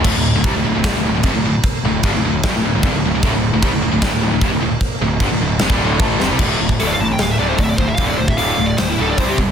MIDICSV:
0, 0, Header, 1, 6, 480
1, 0, Start_track
1, 0, Key_signature, -1, "minor"
1, 0, Tempo, 396825
1, 67, Time_signature, 4, 2, 24, 8
1, 11509, End_track
2, 0, Start_track
2, 0, Title_t, "Lead electric guitar"
2, 0, Program_c, 0, 29
2, 8227, Note_on_c, 0, 69, 70
2, 8304, Note_off_c, 0, 69, 0
2, 8306, Note_on_c, 0, 74, 72
2, 8384, Note_off_c, 0, 74, 0
2, 8392, Note_on_c, 0, 77, 81
2, 8466, Note_off_c, 0, 77, 0
2, 8471, Note_on_c, 0, 81, 103
2, 8585, Note_off_c, 0, 81, 0
2, 8620, Note_on_c, 0, 79, 75
2, 8720, Note_off_c, 0, 79, 0
2, 8731, Note_on_c, 0, 77, 94
2, 8835, Note_off_c, 0, 77, 0
2, 8847, Note_on_c, 0, 76, 83
2, 8934, Note_off_c, 0, 76, 0
2, 8939, Note_on_c, 0, 74, 90
2, 9051, Note_off_c, 0, 74, 0
2, 9051, Note_on_c, 0, 72, 77
2, 9175, Note_off_c, 0, 72, 0
2, 9188, Note_on_c, 0, 74, 79
2, 9230, Note_off_c, 0, 74, 0
2, 9230, Note_on_c, 0, 76, 89
2, 9311, Note_off_c, 0, 76, 0
2, 9316, Note_on_c, 0, 74, 73
2, 9397, Note_off_c, 0, 74, 0
2, 9401, Note_on_c, 0, 72, 83
2, 9524, Note_on_c, 0, 76, 77
2, 9530, Note_off_c, 0, 72, 0
2, 9614, Note_off_c, 0, 76, 0
2, 9619, Note_on_c, 0, 77, 98
2, 9750, Note_on_c, 0, 74, 84
2, 9759, Note_off_c, 0, 77, 0
2, 9885, Note_off_c, 0, 74, 0
2, 9894, Note_on_c, 0, 72, 86
2, 10013, Note_on_c, 0, 76, 84
2, 10017, Note_off_c, 0, 72, 0
2, 10128, Note_off_c, 0, 76, 0
2, 10133, Note_on_c, 0, 77, 86
2, 10475, Note_off_c, 0, 77, 0
2, 10477, Note_on_c, 0, 74, 81
2, 10609, Note_off_c, 0, 74, 0
2, 10621, Note_on_c, 0, 72, 84
2, 10741, Note_off_c, 0, 72, 0
2, 10759, Note_on_c, 0, 64, 47
2, 10870, Note_off_c, 0, 64, 0
2, 10906, Note_on_c, 0, 69, 86
2, 10998, Note_on_c, 0, 74, 97
2, 11004, Note_off_c, 0, 69, 0
2, 11123, Note_off_c, 0, 74, 0
2, 11123, Note_on_c, 0, 72, 79
2, 11233, Note_off_c, 0, 72, 0
2, 11236, Note_on_c, 0, 67, 72
2, 11306, Note_off_c, 0, 67, 0
2, 11509, End_track
3, 0, Start_track
3, 0, Title_t, "Distorted electric guitar"
3, 0, Program_c, 1, 30
3, 67, Note_on_c, 1, 38, 99
3, 79, Note_on_c, 1, 45, 110
3, 174, Note_off_c, 1, 38, 0
3, 186, Note_off_c, 1, 45, 0
3, 188, Note_on_c, 1, 38, 71
3, 199, Note_on_c, 1, 45, 70
3, 380, Note_off_c, 1, 38, 0
3, 385, Note_off_c, 1, 45, 0
3, 428, Note_on_c, 1, 38, 71
3, 434, Note_on_c, 1, 45, 73
3, 538, Note_off_c, 1, 38, 0
3, 538, Note_off_c, 1, 45, 0
3, 543, Note_on_c, 1, 48, 95
3, 543, Note_on_c, 1, 55, 99
3, 658, Note_off_c, 1, 48, 0
3, 658, Note_off_c, 1, 55, 0
3, 666, Note_on_c, 1, 38, 62
3, 673, Note_on_c, 1, 45, 73
3, 768, Note_off_c, 1, 38, 0
3, 776, Note_off_c, 1, 45, 0
3, 783, Note_on_c, 1, 38, 65
3, 790, Note_on_c, 1, 45, 72
3, 895, Note_off_c, 1, 45, 0
3, 898, Note_off_c, 1, 38, 0
3, 910, Note_on_c, 1, 45, 75
3, 913, Note_on_c, 1, 38, 63
3, 1000, Note_off_c, 1, 38, 0
3, 1008, Note_off_c, 1, 45, 0
3, 1015, Note_on_c, 1, 38, 94
3, 1022, Note_on_c, 1, 45, 121
3, 1134, Note_off_c, 1, 38, 0
3, 1138, Note_off_c, 1, 45, 0
3, 1164, Note_on_c, 1, 38, 66
3, 1164, Note_on_c, 1, 45, 73
3, 1265, Note_off_c, 1, 38, 0
3, 1271, Note_off_c, 1, 45, 0
3, 1279, Note_on_c, 1, 38, 64
3, 1286, Note_on_c, 1, 45, 75
3, 1385, Note_off_c, 1, 38, 0
3, 1392, Note_off_c, 1, 45, 0
3, 1400, Note_on_c, 1, 38, 69
3, 1407, Note_on_c, 1, 45, 72
3, 1513, Note_off_c, 1, 38, 0
3, 1517, Note_off_c, 1, 45, 0
3, 1520, Note_on_c, 1, 41, 96
3, 1531, Note_on_c, 1, 48, 111
3, 1627, Note_off_c, 1, 41, 0
3, 1632, Note_off_c, 1, 48, 0
3, 1638, Note_on_c, 1, 38, 62
3, 1647, Note_on_c, 1, 45, 80
3, 1744, Note_off_c, 1, 38, 0
3, 1757, Note_off_c, 1, 45, 0
3, 1758, Note_on_c, 1, 38, 65
3, 1770, Note_on_c, 1, 45, 74
3, 1873, Note_off_c, 1, 38, 0
3, 1879, Note_off_c, 1, 45, 0
3, 2237, Note_on_c, 1, 38, 64
3, 2249, Note_on_c, 1, 45, 74
3, 2424, Note_off_c, 1, 38, 0
3, 2430, Note_off_c, 1, 45, 0
3, 2476, Note_on_c, 1, 43, 80
3, 2490, Note_on_c, 1, 50, 93
3, 2584, Note_off_c, 1, 43, 0
3, 2590, Note_off_c, 1, 50, 0
3, 2591, Note_on_c, 1, 38, 69
3, 2595, Note_on_c, 1, 45, 74
3, 2709, Note_off_c, 1, 38, 0
3, 2711, Note_off_c, 1, 45, 0
3, 2722, Note_on_c, 1, 38, 66
3, 2732, Note_on_c, 1, 45, 77
3, 2907, Note_off_c, 1, 38, 0
3, 2912, Note_off_c, 1, 45, 0
3, 2959, Note_on_c, 1, 38, 92
3, 2971, Note_on_c, 1, 45, 117
3, 3066, Note_off_c, 1, 38, 0
3, 3072, Note_off_c, 1, 45, 0
3, 3082, Note_on_c, 1, 38, 70
3, 3097, Note_on_c, 1, 45, 75
3, 3194, Note_off_c, 1, 38, 0
3, 3202, Note_off_c, 1, 45, 0
3, 3212, Note_on_c, 1, 38, 67
3, 3221, Note_on_c, 1, 45, 73
3, 3320, Note_off_c, 1, 38, 0
3, 3324, Note_off_c, 1, 45, 0
3, 3333, Note_on_c, 1, 38, 72
3, 3336, Note_on_c, 1, 45, 77
3, 3434, Note_off_c, 1, 38, 0
3, 3439, Note_on_c, 1, 43, 104
3, 3442, Note_off_c, 1, 45, 0
3, 3447, Note_on_c, 1, 50, 100
3, 3546, Note_off_c, 1, 43, 0
3, 3550, Note_off_c, 1, 50, 0
3, 3564, Note_on_c, 1, 38, 66
3, 3572, Note_on_c, 1, 45, 72
3, 3676, Note_off_c, 1, 38, 0
3, 3680, Note_off_c, 1, 45, 0
3, 3693, Note_on_c, 1, 38, 62
3, 3694, Note_on_c, 1, 45, 68
3, 3796, Note_off_c, 1, 38, 0
3, 3800, Note_off_c, 1, 45, 0
3, 3810, Note_on_c, 1, 38, 67
3, 3819, Note_on_c, 1, 45, 75
3, 3914, Note_off_c, 1, 38, 0
3, 3919, Note_off_c, 1, 45, 0
3, 3928, Note_on_c, 1, 38, 99
3, 3934, Note_on_c, 1, 45, 112
3, 4025, Note_off_c, 1, 38, 0
3, 4028, Note_off_c, 1, 45, 0
3, 4039, Note_on_c, 1, 38, 75
3, 4043, Note_on_c, 1, 45, 87
3, 4225, Note_off_c, 1, 38, 0
3, 4227, Note_off_c, 1, 45, 0
3, 4275, Note_on_c, 1, 38, 67
3, 4285, Note_on_c, 1, 45, 70
3, 4389, Note_off_c, 1, 38, 0
3, 4393, Note_off_c, 1, 45, 0
3, 4394, Note_on_c, 1, 48, 102
3, 4398, Note_on_c, 1, 55, 104
3, 4496, Note_off_c, 1, 48, 0
3, 4501, Note_on_c, 1, 38, 66
3, 4505, Note_off_c, 1, 55, 0
3, 4511, Note_on_c, 1, 45, 66
3, 4610, Note_off_c, 1, 38, 0
3, 4613, Note_off_c, 1, 45, 0
3, 4625, Note_on_c, 1, 38, 72
3, 4627, Note_on_c, 1, 45, 74
3, 4721, Note_off_c, 1, 38, 0
3, 4731, Note_off_c, 1, 45, 0
3, 4735, Note_on_c, 1, 38, 65
3, 4746, Note_on_c, 1, 45, 79
3, 4851, Note_off_c, 1, 38, 0
3, 4862, Note_off_c, 1, 45, 0
3, 4865, Note_on_c, 1, 38, 100
3, 4876, Note_on_c, 1, 45, 112
3, 4970, Note_off_c, 1, 38, 0
3, 4975, Note_off_c, 1, 45, 0
3, 4984, Note_on_c, 1, 38, 63
3, 4990, Note_on_c, 1, 45, 75
3, 5084, Note_off_c, 1, 38, 0
3, 5089, Note_off_c, 1, 45, 0
3, 5099, Note_on_c, 1, 38, 65
3, 5104, Note_on_c, 1, 45, 80
3, 5197, Note_off_c, 1, 38, 0
3, 5203, Note_off_c, 1, 45, 0
3, 5211, Note_on_c, 1, 38, 65
3, 5218, Note_on_c, 1, 45, 66
3, 5339, Note_off_c, 1, 38, 0
3, 5342, Note_off_c, 1, 45, 0
3, 5347, Note_on_c, 1, 41, 85
3, 5357, Note_on_c, 1, 48, 103
3, 5453, Note_off_c, 1, 41, 0
3, 5456, Note_off_c, 1, 48, 0
3, 5457, Note_on_c, 1, 38, 67
3, 5461, Note_on_c, 1, 45, 71
3, 5556, Note_off_c, 1, 38, 0
3, 5564, Note_off_c, 1, 45, 0
3, 5571, Note_on_c, 1, 38, 65
3, 5579, Note_on_c, 1, 45, 72
3, 5698, Note_off_c, 1, 38, 0
3, 5702, Note_off_c, 1, 45, 0
3, 6070, Note_on_c, 1, 38, 60
3, 6071, Note_on_c, 1, 45, 72
3, 6260, Note_off_c, 1, 38, 0
3, 6260, Note_off_c, 1, 45, 0
3, 6292, Note_on_c, 1, 43, 91
3, 6304, Note_on_c, 1, 50, 102
3, 6408, Note_off_c, 1, 43, 0
3, 6413, Note_on_c, 1, 38, 56
3, 6418, Note_off_c, 1, 50, 0
3, 6422, Note_on_c, 1, 45, 77
3, 6539, Note_off_c, 1, 38, 0
3, 6544, Note_off_c, 1, 45, 0
3, 6558, Note_on_c, 1, 45, 79
3, 6561, Note_on_c, 1, 38, 68
3, 6744, Note_off_c, 1, 45, 0
3, 6745, Note_off_c, 1, 38, 0
3, 6789, Note_on_c, 1, 41, 95
3, 6797, Note_on_c, 1, 48, 102
3, 6900, Note_off_c, 1, 41, 0
3, 6904, Note_off_c, 1, 48, 0
3, 6914, Note_on_c, 1, 38, 88
3, 6914, Note_on_c, 1, 45, 102
3, 6921, Note_on_c, 1, 50, 100
3, 7251, Note_off_c, 1, 45, 0
3, 7261, Note_off_c, 1, 38, 0
3, 7264, Note_on_c, 1, 52, 108
3, 7266, Note_off_c, 1, 50, 0
3, 7266, Note_on_c, 1, 45, 93
3, 7276, Note_on_c, 1, 57, 91
3, 7497, Note_off_c, 1, 52, 0
3, 7498, Note_off_c, 1, 45, 0
3, 7504, Note_off_c, 1, 57, 0
3, 7516, Note_on_c, 1, 41, 87
3, 7530, Note_on_c, 1, 48, 96
3, 7609, Note_off_c, 1, 48, 0
3, 7619, Note_off_c, 1, 41, 0
3, 7624, Note_on_c, 1, 48, 80
3, 7638, Note_on_c, 1, 55, 91
3, 7737, Note_off_c, 1, 48, 0
3, 7744, Note_off_c, 1, 55, 0
3, 7754, Note_on_c, 1, 38, 82
3, 7758, Note_on_c, 1, 45, 102
3, 7769, Note_on_c, 1, 50, 102
3, 7975, Note_off_c, 1, 38, 0
3, 7977, Note_off_c, 1, 45, 0
3, 7983, Note_off_c, 1, 50, 0
3, 7996, Note_on_c, 1, 38, 74
3, 8002, Note_on_c, 1, 45, 77
3, 8207, Note_off_c, 1, 38, 0
3, 8210, Note_off_c, 1, 45, 0
3, 8243, Note_on_c, 1, 38, 82
3, 8254, Note_on_c, 1, 45, 87
3, 8261, Note_on_c, 1, 50, 92
3, 8460, Note_off_c, 1, 38, 0
3, 8466, Note_off_c, 1, 45, 0
3, 8469, Note_off_c, 1, 50, 0
3, 8493, Note_on_c, 1, 38, 66
3, 8495, Note_on_c, 1, 45, 79
3, 8692, Note_off_c, 1, 38, 0
3, 8696, Note_off_c, 1, 45, 0
3, 8706, Note_on_c, 1, 38, 82
3, 8715, Note_on_c, 1, 45, 82
3, 8922, Note_off_c, 1, 38, 0
3, 8927, Note_off_c, 1, 45, 0
3, 8939, Note_on_c, 1, 38, 89
3, 8950, Note_on_c, 1, 45, 100
3, 8958, Note_on_c, 1, 50, 107
3, 9169, Note_off_c, 1, 38, 0
3, 9174, Note_off_c, 1, 45, 0
3, 9178, Note_off_c, 1, 50, 0
3, 9190, Note_on_c, 1, 38, 67
3, 9196, Note_on_c, 1, 45, 78
3, 9404, Note_off_c, 1, 38, 0
3, 9407, Note_off_c, 1, 45, 0
3, 9423, Note_on_c, 1, 38, 74
3, 9424, Note_on_c, 1, 45, 77
3, 9641, Note_off_c, 1, 38, 0
3, 9642, Note_off_c, 1, 45, 0
3, 9660, Note_on_c, 1, 38, 86
3, 9677, Note_on_c, 1, 45, 102
3, 9681, Note_on_c, 1, 50, 98
3, 9881, Note_off_c, 1, 38, 0
3, 9883, Note_off_c, 1, 45, 0
3, 9896, Note_on_c, 1, 38, 74
3, 9897, Note_on_c, 1, 45, 78
3, 9900, Note_off_c, 1, 50, 0
3, 10109, Note_off_c, 1, 38, 0
3, 10119, Note_off_c, 1, 45, 0
3, 10124, Note_on_c, 1, 38, 75
3, 10138, Note_on_c, 1, 45, 86
3, 10148, Note_on_c, 1, 50, 85
3, 10345, Note_off_c, 1, 38, 0
3, 10345, Note_off_c, 1, 45, 0
3, 10359, Note_on_c, 1, 38, 72
3, 10360, Note_on_c, 1, 45, 80
3, 10374, Note_off_c, 1, 50, 0
3, 10590, Note_off_c, 1, 38, 0
3, 10590, Note_off_c, 1, 45, 0
3, 10619, Note_on_c, 1, 38, 74
3, 10629, Note_on_c, 1, 45, 85
3, 10840, Note_off_c, 1, 38, 0
3, 10845, Note_off_c, 1, 45, 0
3, 10859, Note_on_c, 1, 38, 79
3, 10874, Note_on_c, 1, 45, 83
3, 10880, Note_on_c, 1, 50, 96
3, 11090, Note_off_c, 1, 38, 0
3, 11097, Note_off_c, 1, 45, 0
3, 11100, Note_off_c, 1, 50, 0
3, 11117, Note_on_c, 1, 48, 81
3, 11125, Note_on_c, 1, 55, 87
3, 11131, Note_on_c, 1, 60, 96
3, 11339, Note_off_c, 1, 48, 0
3, 11343, Note_off_c, 1, 55, 0
3, 11346, Note_off_c, 1, 60, 0
3, 11362, Note_on_c, 1, 48, 70
3, 11370, Note_on_c, 1, 55, 76
3, 11509, Note_off_c, 1, 48, 0
3, 11509, Note_off_c, 1, 55, 0
3, 11509, End_track
4, 0, Start_track
4, 0, Title_t, "Distorted electric guitar"
4, 0, Program_c, 2, 30
4, 10410, Note_on_c, 2, 45, 81
4, 10616, Note_off_c, 2, 45, 0
4, 11509, End_track
5, 0, Start_track
5, 0, Title_t, "Picked electric bass"
5, 0, Program_c, 3, 34
5, 45, Note_on_c, 3, 26, 88
5, 167, Note_off_c, 3, 26, 0
5, 189, Note_on_c, 3, 26, 78
5, 403, Note_off_c, 3, 26, 0
5, 410, Note_on_c, 3, 26, 86
5, 518, Note_off_c, 3, 26, 0
5, 525, Note_on_c, 3, 36, 96
5, 647, Note_off_c, 3, 36, 0
5, 653, Note_on_c, 3, 26, 86
5, 771, Note_off_c, 3, 26, 0
5, 790, Note_on_c, 3, 26, 80
5, 900, Note_off_c, 3, 26, 0
5, 907, Note_on_c, 3, 26, 91
5, 1000, Note_off_c, 3, 26, 0
5, 1008, Note_on_c, 3, 26, 94
5, 1122, Note_off_c, 3, 26, 0
5, 1129, Note_on_c, 3, 26, 85
5, 1233, Note_off_c, 3, 26, 0
5, 1240, Note_on_c, 3, 26, 87
5, 1355, Note_off_c, 3, 26, 0
5, 1362, Note_on_c, 3, 26, 77
5, 1486, Note_off_c, 3, 26, 0
5, 1497, Note_on_c, 3, 29, 93
5, 1607, Note_off_c, 3, 29, 0
5, 1614, Note_on_c, 3, 26, 76
5, 1726, Note_off_c, 3, 26, 0
5, 1733, Note_on_c, 3, 26, 83
5, 1851, Note_off_c, 3, 26, 0
5, 2217, Note_on_c, 3, 26, 75
5, 2445, Note_off_c, 3, 26, 0
5, 2458, Note_on_c, 3, 31, 95
5, 2574, Note_off_c, 3, 31, 0
5, 2581, Note_on_c, 3, 26, 82
5, 2695, Note_off_c, 3, 26, 0
5, 2701, Note_on_c, 3, 26, 80
5, 2927, Note_off_c, 3, 26, 0
5, 2944, Note_on_c, 3, 26, 107
5, 3057, Note_off_c, 3, 26, 0
5, 3079, Note_on_c, 3, 26, 76
5, 3185, Note_off_c, 3, 26, 0
5, 3198, Note_on_c, 3, 26, 85
5, 3305, Note_off_c, 3, 26, 0
5, 3319, Note_on_c, 3, 26, 84
5, 3419, Note_off_c, 3, 26, 0
5, 3426, Note_on_c, 3, 31, 97
5, 3538, Note_off_c, 3, 31, 0
5, 3548, Note_on_c, 3, 26, 83
5, 3659, Note_off_c, 3, 26, 0
5, 3672, Note_on_c, 3, 26, 88
5, 3781, Note_off_c, 3, 26, 0
5, 3788, Note_on_c, 3, 26, 82
5, 3895, Note_off_c, 3, 26, 0
5, 3902, Note_on_c, 3, 26, 97
5, 4016, Note_off_c, 3, 26, 0
5, 4031, Note_on_c, 3, 26, 86
5, 4252, Note_off_c, 3, 26, 0
5, 4268, Note_on_c, 3, 26, 89
5, 4368, Note_off_c, 3, 26, 0
5, 4375, Note_on_c, 3, 36, 104
5, 4492, Note_off_c, 3, 36, 0
5, 4501, Note_on_c, 3, 26, 83
5, 4615, Note_off_c, 3, 26, 0
5, 4642, Note_on_c, 3, 26, 77
5, 4746, Note_off_c, 3, 26, 0
5, 4761, Note_on_c, 3, 26, 88
5, 4856, Note_off_c, 3, 26, 0
5, 4864, Note_on_c, 3, 26, 97
5, 4968, Note_off_c, 3, 26, 0
5, 4976, Note_on_c, 3, 26, 77
5, 5092, Note_off_c, 3, 26, 0
5, 5113, Note_on_c, 3, 26, 88
5, 5214, Note_off_c, 3, 26, 0
5, 5221, Note_on_c, 3, 26, 79
5, 5329, Note_off_c, 3, 26, 0
5, 5336, Note_on_c, 3, 29, 98
5, 5452, Note_off_c, 3, 29, 0
5, 5474, Note_on_c, 3, 26, 82
5, 5582, Note_off_c, 3, 26, 0
5, 5596, Note_on_c, 3, 26, 84
5, 5703, Note_off_c, 3, 26, 0
5, 6067, Note_on_c, 3, 26, 77
5, 6280, Note_off_c, 3, 26, 0
5, 6287, Note_on_c, 3, 31, 98
5, 6403, Note_off_c, 3, 31, 0
5, 6411, Note_on_c, 3, 26, 83
5, 6529, Note_off_c, 3, 26, 0
5, 6543, Note_on_c, 3, 26, 80
5, 6767, Note_off_c, 3, 26, 0
5, 6782, Note_on_c, 3, 29, 97
5, 6878, Note_off_c, 3, 29, 0
5, 6886, Note_on_c, 3, 26, 93
5, 7230, Note_off_c, 3, 26, 0
5, 7246, Note_on_c, 3, 33, 94
5, 7478, Note_off_c, 3, 33, 0
5, 7519, Note_on_c, 3, 29, 92
5, 7624, Note_off_c, 3, 29, 0
5, 7635, Note_on_c, 3, 36, 90
5, 7717, Note_off_c, 3, 36, 0
5, 7724, Note_on_c, 3, 26, 95
5, 7898, Note_off_c, 3, 26, 0
5, 7984, Note_on_c, 3, 26, 82
5, 8152, Note_off_c, 3, 26, 0
5, 8235, Note_on_c, 3, 26, 92
5, 8399, Note_off_c, 3, 26, 0
5, 8461, Note_on_c, 3, 33, 83
5, 8629, Note_off_c, 3, 33, 0
5, 8703, Note_on_c, 3, 26, 83
5, 8871, Note_off_c, 3, 26, 0
5, 8946, Note_on_c, 3, 26, 80
5, 9113, Note_off_c, 3, 26, 0
5, 9178, Note_on_c, 3, 26, 82
5, 9348, Note_off_c, 3, 26, 0
5, 9413, Note_on_c, 3, 26, 83
5, 9585, Note_off_c, 3, 26, 0
5, 9651, Note_on_c, 3, 26, 96
5, 9823, Note_off_c, 3, 26, 0
5, 9915, Note_on_c, 3, 26, 79
5, 10079, Note_off_c, 3, 26, 0
5, 10135, Note_on_c, 3, 26, 88
5, 10307, Note_off_c, 3, 26, 0
5, 10392, Note_on_c, 3, 26, 79
5, 10557, Note_off_c, 3, 26, 0
5, 10634, Note_on_c, 3, 26, 94
5, 10799, Note_off_c, 3, 26, 0
5, 10876, Note_on_c, 3, 26, 81
5, 11040, Note_off_c, 3, 26, 0
5, 11099, Note_on_c, 3, 36, 92
5, 11269, Note_off_c, 3, 36, 0
5, 11335, Note_on_c, 3, 28, 82
5, 11509, Note_off_c, 3, 28, 0
5, 11509, End_track
6, 0, Start_track
6, 0, Title_t, "Drums"
6, 54, Note_on_c, 9, 36, 107
6, 55, Note_on_c, 9, 49, 125
6, 55, Note_on_c, 9, 57, 61
6, 175, Note_off_c, 9, 36, 0
6, 176, Note_off_c, 9, 49, 0
6, 176, Note_off_c, 9, 57, 0
6, 534, Note_on_c, 9, 36, 119
6, 535, Note_on_c, 9, 57, 60
6, 655, Note_off_c, 9, 36, 0
6, 656, Note_off_c, 9, 57, 0
6, 1017, Note_on_c, 9, 36, 112
6, 1021, Note_on_c, 9, 57, 66
6, 1027, Note_on_c, 9, 38, 121
6, 1138, Note_off_c, 9, 36, 0
6, 1142, Note_off_c, 9, 57, 0
6, 1148, Note_off_c, 9, 38, 0
6, 1489, Note_on_c, 9, 57, 67
6, 1497, Note_on_c, 9, 36, 108
6, 1610, Note_off_c, 9, 57, 0
6, 1618, Note_off_c, 9, 36, 0
6, 1976, Note_on_c, 9, 57, 67
6, 1980, Note_on_c, 9, 36, 107
6, 2097, Note_off_c, 9, 57, 0
6, 2101, Note_off_c, 9, 36, 0
6, 2456, Note_on_c, 9, 57, 66
6, 2463, Note_on_c, 9, 36, 106
6, 2577, Note_off_c, 9, 57, 0
6, 2584, Note_off_c, 9, 36, 0
6, 2943, Note_on_c, 9, 57, 75
6, 2946, Note_on_c, 9, 36, 123
6, 2949, Note_on_c, 9, 38, 122
6, 3064, Note_off_c, 9, 57, 0
6, 3067, Note_off_c, 9, 36, 0
6, 3070, Note_off_c, 9, 38, 0
6, 3425, Note_on_c, 9, 36, 116
6, 3425, Note_on_c, 9, 57, 69
6, 3546, Note_off_c, 9, 36, 0
6, 3546, Note_off_c, 9, 57, 0
6, 3906, Note_on_c, 9, 36, 116
6, 3911, Note_on_c, 9, 57, 62
6, 4027, Note_off_c, 9, 36, 0
6, 4032, Note_off_c, 9, 57, 0
6, 4385, Note_on_c, 9, 36, 107
6, 4387, Note_on_c, 9, 57, 68
6, 4506, Note_off_c, 9, 36, 0
6, 4508, Note_off_c, 9, 57, 0
6, 4862, Note_on_c, 9, 36, 114
6, 4866, Note_on_c, 9, 57, 65
6, 4872, Note_on_c, 9, 38, 122
6, 4983, Note_off_c, 9, 36, 0
6, 4987, Note_off_c, 9, 57, 0
6, 4993, Note_off_c, 9, 38, 0
6, 5336, Note_on_c, 9, 57, 67
6, 5340, Note_on_c, 9, 36, 119
6, 5457, Note_off_c, 9, 57, 0
6, 5461, Note_off_c, 9, 36, 0
6, 5813, Note_on_c, 9, 57, 62
6, 5816, Note_on_c, 9, 36, 102
6, 5934, Note_off_c, 9, 57, 0
6, 5937, Note_off_c, 9, 36, 0
6, 6292, Note_on_c, 9, 57, 68
6, 6293, Note_on_c, 9, 36, 115
6, 6413, Note_off_c, 9, 57, 0
6, 6414, Note_off_c, 9, 36, 0
6, 6764, Note_on_c, 9, 57, 75
6, 6770, Note_on_c, 9, 38, 121
6, 6885, Note_off_c, 9, 57, 0
6, 6891, Note_off_c, 9, 38, 0
6, 6892, Note_on_c, 9, 36, 118
6, 7013, Note_off_c, 9, 36, 0
6, 7254, Note_on_c, 9, 36, 121
6, 7256, Note_on_c, 9, 57, 70
6, 7375, Note_off_c, 9, 36, 0
6, 7377, Note_off_c, 9, 57, 0
6, 7499, Note_on_c, 9, 38, 71
6, 7620, Note_off_c, 9, 38, 0
6, 7727, Note_on_c, 9, 49, 111
6, 7731, Note_on_c, 9, 36, 104
6, 7848, Note_off_c, 9, 49, 0
6, 7852, Note_off_c, 9, 36, 0
6, 8094, Note_on_c, 9, 36, 81
6, 8215, Note_off_c, 9, 36, 0
6, 8221, Note_on_c, 9, 46, 59
6, 8342, Note_off_c, 9, 46, 0
6, 8692, Note_on_c, 9, 46, 54
6, 8698, Note_on_c, 9, 38, 114
6, 8813, Note_off_c, 9, 46, 0
6, 8819, Note_off_c, 9, 38, 0
6, 9170, Note_on_c, 9, 46, 53
6, 9176, Note_on_c, 9, 36, 91
6, 9291, Note_off_c, 9, 46, 0
6, 9297, Note_off_c, 9, 36, 0
6, 9414, Note_on_c, 9, 36, 90
6, 9535, Note_off_c, 9, 36, 0
6, 9646, Note_on_c, 9, 46, 60
6, 9655, Note_on_c, 9, 36, 101
6, 9767, Note_off_c, 9, 46, 0
6, 9776, Note_off_c, 9, 36, 0
6, 10017, Note_on_c, 9, 36, 81
6, 10133, Note_on_c, 9, 46, 59
6, 10138, Note_off_c, 9, 36, 0
6, 10254, Note_off_c, 9, 46, 0
6, 10619, Note_on_c, 9, 46, 65
6, 10625, Note_on_c, 9, 38, 116
6, 10740, Note_off_c, 9, 46, 0
6, 10746, Note_off_c, 9, 38, 0
6, 11101, Note_on_c, 9, 46, 64
6, 11105, Note_on_c, 9, 36, 83
6, 11222, Note_off_c, 9, 46, 0
6, 11226, Note_off_c, 9, 36, 0
6, 11347, Note_on_c, 9, 36, 80
6, 11468, Note_off_c, 9, 36, 0
6, 11509, End_track
0, 0, End_of_file